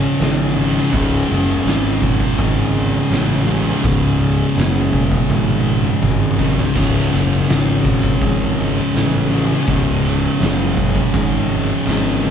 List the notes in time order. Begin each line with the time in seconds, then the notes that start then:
Already playing: C#2 G#2 C#3 G#3 C#4
0.20 G#1, snare, open hi-hat
0.57 C#2 G#2 C#3
0.77 snare
0.92 C#1 C#2 G#2 C#3, kick, open hi-hat
1.30 F#1
1.65 G#1, snare, open hi-hat
2.02 kick
2.20 kick
2.38 G#1, kick, open hi-hat
3.11 A1, snare, open hi-hat
3.47 C#2 G#2 C#3
3.68 snare
3.83 C#1 C#2 G#2 C#3, kick, open hi-hat
4.56 F#1, snare, open hi-hat
4.93 kick
5.12 kick
5.30 G#1, kick
5.48 high tom
5.84 mid tom
6.03 G#1, kick
6.39 C#2 G#2 C#3, kick
6.58 floor tom
6.75 C#1 C#2 G#2 C#3 F#3, kick, open hi-hat, crash
7.13 F#1, snare
7.48 G#1, snare, open hi-hat
7.85 kick
8.03 kick
8.21 G#1, kick, open hi-hat
8.94 A1, snare, open hi-hat
9.31 C#2 G#2 C#3
9.52 snare
9.67 C#1 C#2 G#2 C#3, kick, open hi-hat
10.07 snare
10.40 F#1, snare, open hi-hat
10.77 kick
10.96 kick
11.14 G#1, kick, open hi-hat
11.86 G#1, snare, open hi-hat
12.23 C#2 G#2 C#3